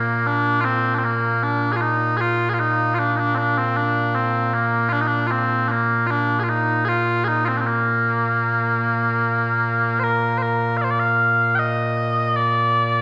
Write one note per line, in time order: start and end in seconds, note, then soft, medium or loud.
0.00 13.02 A#2 medium
0.00 1.04 A#3 medium
0.27 0.61 D4 loud
0.61 0.95 C4 loud
0.61 0.65 F4 loud
0.95 0.99 D4 medium
0.99 1.04 C4 medium
1.04 1.43 A#3 medium
1.43 1.72 D4 loud
1.72 1.76 G#4 medium
1.76 1.81 F4 medium
1.81 2.17 D#4 medium
2.17 2.49 F4 loud
2.17 2.21 G#4 loud
2.49 2.54 G#4 medium
2.54 2.60 F4 medium
2.60 2.95 D#4 loud
2.95 2.99 F4 medium
2.99 3.16 D4 medium
3.16 3.35 D4 loud
3.16 3.19 D#4 medium
3.35 3.38 C4 medium
3.35 3.58 D4 medium
3.58 3.77 C4 medium
3.77 4.15 D4 loud
4.15 4.54 C4 medium
4.54 4.89 A#3 medium
4.89 5.01 D4 loud
4.89 4.93 F4 loud
5.01 5.07 D#4 medium
5.07 5.27 D4 loud
5.27 5.31 F4 medium
5.31 5.68 C4 medium
5.68 6.07 A#3 medium
5.68 5.71 D4 medium
6.07 6.11 F4 loud
6.11 6.40 D4 loud
6.40 6.49 F4 medium
6.40 6.43 G#4 medium
6.49 6.85 D#4 medium
6.85 7.24 F4 loud
6.85 6.88 G#4 loud
7.24 7.45 D#4 loud
7.24 7.28 G#4 loud
7.45 7.58 C4 medium
7.45 7.49 F4 medium
7.58 7.67 C4 medium
7.58 7.61 D4 medium
7.67 10.00 A#3 medium
10.00 10.38 A#4 medium
10.00 10.04 C5 medium
10.38 10.42 C5 medium
10.42 10.77 A#4 medium
10.77 10.81 F5 medium
10.81 10.91 C5 medium
10.81 10.84 D5 medium
10.91 11.00 D5 medium
11.00 11.55 F5 medium
11.55 12.36 D#5 medium
11.55 11.59 G5 medium
12.36 13.02 D5 medium